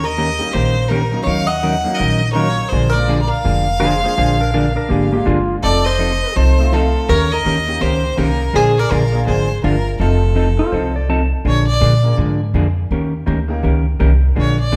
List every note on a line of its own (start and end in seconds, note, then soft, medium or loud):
0.00 0.39 D#2 medium
0.00 0.51 A#4 medium
0.04 0.55 D#5 loud
0.18 0.29 D#3 medium
0.18 0.29 A#3 medium
0.18 0.29 C#4 medium
0.18 0.29 G4 medium
0.18 0.29 A#4 medium
0.39 0.87 G3 medium
0.39 0.87 A#3 medium
0.39 0.87 C#4 medium
0.39 0.88 D#4 medium
0.51 1.12 A#1 medium
0.51 0.75 D#3 soft
0.51 0.75 A#3 medium
0.51 0.75 C#4 medium
0.51 0.88 G4 medium
0.51 0.89 C5 loud
0.55 0.76 G4 medium
0.55 0.76 A#4 medium
0.88 1.01 D#3 medium
0.88 1.02 A#3 medium
0.88 1.02 C#4 medium
0.88 1.25 D#4 medium
0.88 1.02 G4 medium
0.88 1.23 A#4 medium
0.88 1.02 A#4 medium
1.11 1.24 F#3 medium
1.11 1.24 A#3 medium
1.11 1.25 C#4 medium
1.11 1.25 D#4 medium
1.23 1.85 D#2 medium
1.23 1.48 D#3 medium
1.23 1.48 F#3 medium
1.23 1.48 C#4 medium
1.23 1.48 D#4 medium
1.23 1.48 A#4 medium
1.23 1.47 C#5 medium
1.23 1.48 F5 loud
1.47 1.95 D#5 medium
1.47 1.96 F#5 loud
1.63 1.74 D#3 medium
1.63 1.74 F#3 medium
1.63 1.74 C#4 medium
1.63 1.74 D#4 medium
1.63 1.74 A#4 medium
1.84 1.97 F#3 medium
1.84 1.97 A#3 medium
1.84 1.98 C#4 medium
1.84 1.98 D#4 medium
1.95 2.31 A#4 medium
1.95 2.32 D#5 loud
1.99 2.58 A#1 medium
1.99 2.21 D#3 medium
1.99 2.20 F#3 medium
1.99 2.21 C#4 medium
1.99 2.21 D#4 medium
1.99 2.21 A#4 medium
2.33 2.46 D#3 medium
2.33 2.55 F#3 medium
2.33 2.46 F#3 medium
2.33 2.56 A#3 medium
2.33 2.47 C#4 medium
2.33 2.56 C#4 medium
2.33 2.47 D#4 medium
2.33 2.56 F4 medium
2.33 2.68 A#4 medium
2.33 2.47 A#4 medium
2.33 2.70 C#5 loud
2.68 2.89 G#4 medium
2.68 2.94 C5 medium
2.72 3.30 A#1 medium
2.72 2.93 D3 soft
2.72 2.93 F3 medium
2.72 2.94 A#3 medium
2.72 2.93 D4 medium
2.72 2.94 G#4 medium
2.89 3.20 A#4 medium
2.89 3.21 D5 medium
2.95 3.07 G#3 medium
2.95 3.07 A#3 medium
2.95 3.07 D4 medium
2.95 3.08 F4 medium
3.08 3.19 D3 medium
3.08 3.19 F3 medium
3.08 3.20 A#3 medium
3.08 3.20 D4 medium
3.08 3.20 G#4 medium
3.21 3.26 A#4 medium
3.21 3.30 D5 medium
3.27 5.25 A#4 medium
3.27 5.25 F5 loud
3.44 4.03 F1 medium
3.44 3.66 D3 medium
3.44 3.66 F3 medium
3.44 3.66 A#3 medium
3.44 3.66 D4 medium
3.44 3.66 G#4 medium
3.80 3.92 D3 medium
3.80 3.92 F3 medium
3.80 3.93 A#3 medium
3.80 3.92 D4 medium
3.80 4.03 G#4 medium
3.80 3.93 G#4 medium
3.80 4.03 C5 medium
4.02 4.15 G#3 medium
4.02 4.16 A#3 medium
4.02 4.16 D4 medium
4.02 4.16 F4 medium
4.02 4.16 G#4 medium
4.02 4.17 C5 medium
4.17 4.76 A#1 medium
4.17 4.39 D3 medium
4.17 4.39 F3 medium
4.17 4.39 A#3 medium
4.17 4.39 D4 medium
4.17 4.39 G#4 medium
4.17 4.40 C5 medium
4.40 4.53 D4 medium
4.40 4.53 A#4 medium
4.54 4.65 D3 medium
4.54 4.65 F3 medium
4.54 4.65 A#3 medium
4.54 4.75 D4 medium
4.54 4.65 D4 medium
4.54 4.65 G#4 medium
4.54 4.76 A#4 medium
4.76 4.89 D4 medium
4.76 4.90 A#4 medium
4.89 5.21 G#1 medium
4.89 5.11 D3 soft
4.89 5.12 F3 soft
4.89 5.11 A#3 medium
4.89 5.12 A#3 medium
4.89 5.12 D4 medium
4.89 5.12 G4 medium
4.89 5.12 G#4 medium
5.12 5.59 G#3 medium
5.12 5.60 A#3 medium
5.12 5.25 A#3 medium
5.12 5.60 D4 medium
5.12 5.60 F4 medium
5.12 5.26 G4 medium
5.25 5.58 G1 medium
5.25 5.37 D3 medium
5.25 5.37 F3 medium
5.25 5.37 A#3 medium
5.25 5.37 D4 medium
5.25 5.55 F4 medium
5.25 5.38 G#4 medium
5.63 6.22 F1 medium
5.63 5.84 F3 medium
5.63 5.84 C4 medium
5.63 5.84 D#4 medium
5.63 5.86 A4 medium
5.63 5.85 A4 medium
5.63 5.86 D5 loud
5.85 6.36 C5 medium
5.85 6.38 D#5 loud
5.99 6.10 F3 medium
5.99 6.11 C4 medium
5.99 6.11 D#4 medium
5.99 6.11 A4 medium
6.36 6.94 C2 medium
6.36 6.57 F3 medium
6.36 6.57 C4 soft
6.36 6.58 D#4 medium
6.36 6.71 F4 medium
6.36 6.58 A4 medium
6.36 6.75 C5 loud
6.59 7.06 A3 medium
6.59 7.06 C4 medium
6.59 7.07 D#4 medium
6.59 7.07 F4 medium
6.72 6.84 F3 medium
6.72 6.84 C4 medium
6.72 6.84 D#4 medium
6.72 7.09 F4 medium
6.72 7.11 A4 medium
6.72 6.84 A4 medium
7.09 7.38 D#2 medium
7.09 7.30 D#3 medium
7.09 7.30 A#3 medium
7.09 7.30 C#4 medium
7.09 7.30 G4 medium
7.09 7.32 A#4 medium
7.09 7.31 A#4 medium
7.09 7.33 C#5 loud
7.32 7.82 A#4 medium
7.32 7.83 D#5 loud
7.45 7.76 D#2 medium
7.45 7.56 D#3 medium
7.45 7.57 A#3 medium
7.45 7.57 C#4 medium
7.45 7.57 G4 medium
7.45 7.57 A#4 medium
7.67 7.80 A#3 medium
7.67 7.80 C#4 medium
7.67 7.80 D#4 medium
7.67 7.80 G4 medium
7.80 8.13 C#2 medium
7.80 8.02 D#3 medium
7.80 8.02 A#3 medium
7.80 8.03 C#4 medium
7.80 8.03 G4 medium
7.80 8.19 G4 medium
7.80 8.03 A#4 medium
7.80 8.19 C5 loud
8.16 8.49 C2 medium
8.16 8.29 D#3 medium
8.16 8.37 A#3 medium
8.16 8.29 A#3 medium
8.16 8.38 C#4 medium
8.16 8.29 C#4 medium
8.16 8.38 D#4 medium
8.16 8.56 D#4 medium
8.16 8.39 G4 medium
8.16 8.29 G4 medium
8.16 8.57 A#4 loud
8.16 8.29 A#4 medium
8.53 8.84 A#1 medium
8.53 8.75 D3 medium
8.53 8.75 F3 medium
8.53 8.75 A#3 medium
8.53 8.75 D4 medium
8.53 8.76 G#4 medium
8.53 8.79 G#4 medium
8.53 8.79 C5 medium
8.78 8.92 A#4 medium
8.78 8.93 D5 medium
8.91 9.22 A#1 medium
8.91 9.02 D3 medium
8.91 9.02 F3 medium
8.91 9.02 A#3 medium
8.91 9.02 D4 medium
8.91 9.27 F4 medium
8.91 9.02 G#4 medium
8.91 9.27 A#4 medium
9.12 9.25 A#3 medium
9.12 9.25 D4 medium
9.12 9.26 F4 medium
9.12 9.26 G#4 medium
9.27 9.58 G#1 medium
9.27 9.48 D3 soft
9.27 9.48 F3 soft
9.27 9.48 A#3 medium
9.27 9.48 D4 medium
9.27 9.48 G#4 medium
9.27 9.61 G#4 medium
9.27 9.61 C5 medium
9.64 9.95 G1 medium
9.64 9.75 D3 medium
9.64 9.75 F3 medium
9.64 9.75 A#3 medium
9.64 9.75 D4 medium
9.64 9.98 F4 medium
9.64 9.75 G#4 medium
9.64 9.98 A#4 medium
10.00 10.58 F1 medium
10.00 10.21 F3 soft
10.00 10.21 C4 medium
10.00 10.22 D#4 medium
10.00 11.06 F4 medium
10.00 10.22 A4 medium
10.00 11.05 A4 medium
10.35 10.47 F3 medium
10.35 10.47 C4 medium
10.35 10.47 D#4 medium
10.35 10.48 A4 medium
10.58 10.71 C4 medium
10.58 10.71 D#4 medium
10.58 10.72 F4 medium
10.58 10.72 A4 medium
10.72 11.31 C2 medium
10.72 10.94 F3 soft
10.72 10.95 C4 medium
10.72 10.95 D#4 medium
10.72 10.95 A4 medium
10.72 10.95 C5 medium
10.96 11.09 D5 medium
11.09 11.20 F3 medium
11.09 11.21 C4 medium
11.09 11.21 D#4 medium
11.09 11.21 A4 medium
11.09 11.32 A5 medium
11.45 11.80 A#1 medium
11.45 11.66 D3 soft
11.45 11.67 F3 medium
11.45 11.67 A#3 medium
11.45 11.67 D4 medium
11.45 11.67 G#4 medium
11.45 11.66 C#5 medium
11.67 12.14 D5 loud
11.81 12.17 A#2 medium
11.81 11.93 D3 medium
11.81 11.93 F3 medium
11.81 11.93 A#3 medium
11.81 11.93 D4 medium
11.81 11.93 G#4 medium
12.03 12.16 A#3 medium
12.03 12.16 D4 medium
12.03 12.17 F4 medium
12.03 12.17 G#4 medium
12.03 12.17 A#4 medium
12.17 12.53 G#2 medium
12.17 12.39 D3 medium
12.17 12.39 F3 medium
12.17 12.39 A#3 medium
12.17 12.40 D4 medium
12.17 12.40 G#4 medium
12.54 12.89 F2 medium
12.54 12.66 D3 medium
12.54 12.66 F3 medium
12.54 12.66 A#3 medium
12.54 12.66 D4 medium
12.54 12.66 G#4 medium
12.91 13.26 D#2 medium
12.91 13.13 D#3 soft
12.91 13.13 A#3 medium
12.91 13.13 C#4 medium
12.91 13.13 G4 medium
12.91 13.13 A#4 soft
13.26 13.63 D2 medium
13.26 13.38 D#3 medium
13.26 13.38 A#3 medium
13.26 13.38 C#4 medium
13.26 13.38 G4 medium
13.26 13.39 A#4 medium
13.48 13.61 A#3 medium
13.48 13.62 C#4 medium
13.48 13.62 D#4 medium
13.48 13.62 G4 medium
13.48 13.62 A#4 medium
13.63 13.99 C#2 medium
13.63 13.85 D#3 medium
13.63 13.85 A#3 soft
13.63 13.85 C#4 medium
13.63 13.85 G4 medium
13.63 13.85 A#4 medium
13.99 14.35 C2 medium
13.99 14.11 D#3 medium
13.99 14.11 A#3 medium
13.99 14.11 C#4 medium
13.99 14.11 G4 medium
13.99 14.11 A#4 medium
14.35 14.72 A#1 medium
14.35 14.57 D3 medium
14.35 14.58 F3 medium
14.35 14.58 A#3 medium
14.35 14.58 D4 medium
14.35 14.58 G#4 medium
14.40 14.59 C#5 medium
14.60 14.76 D5 medium
14.72 14.76 D3 medium
14.72 14.76 F3 medium
14.72 14.76 A#3 medium
14.72 14.76 D4 medium
14.72 14.76 G#4 medium